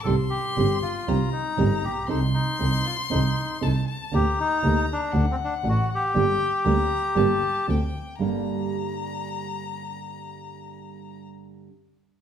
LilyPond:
<<
  \new Staff \with { instrumentName = "Violin" } { \time 4/4 \key g \minor \tempo 4 = 118 c'''2 bes''2 | c'''2. a''8 a''8 | bes''2 fis''2 | g''4 bes''4 a''4 g''4 |
bes''1~ | bes''1 | }
  \new Staff \with { instrumentName = "Bandoneon" } { \time 4/4 \key g \minor a'8 g'4 f'4 ees'4 g'8 | ees'8 ees'4 f'8 ees'4 r4 | g'8 ees'4 d'8. c'16 d'8 fis'8 g'8~ | g'2. r4 |
r1 | r1 | }
  \new Staff \with { instrumentName = "Nylon-string guitar" } { \time 4/4 \key g \minor <c ees g c' g'>8 r8 <c ees g c' g'>8 r8 <c ees g c' g'>8 r8 <c ees g c' g'>8 r8 | <c' ees' a'>8 r8 <c' ees' a'>8 r8 <c' ees' a'>8 r8 <c' ees' a'>8 r8 | <d bes d' g'>8 r8 <d bes d' g'>8 r8 <d a d' fis'>8 r8 <d a d' fis'>8 r8 | <d g bes d' g'>8 r8 <d g bes d' g'>8 r8 <d g bes d' g'>8 r8 <d a c' fis'>8 r8 |
<g, d g bes d' g'>1~ | <g, d g bes d' g'>1 | }
  \new Staff \with { instrumentName = "Double bass" } { \clef bass \time 4/4 \key g \minor c,8 r8 g,,8 r8 c,8 r8 g,,8 bes,,8 | c,8 r8 c,8 r8 c,8 r8 c,8 r8 | d,8 r8 d,8 r8 d,8 r8 a,,8 r8 | g,,8 r8 d,8 r8 g,,8 r8 d,8 r8 |
g,,8 r2. r8 | r1 | }
>>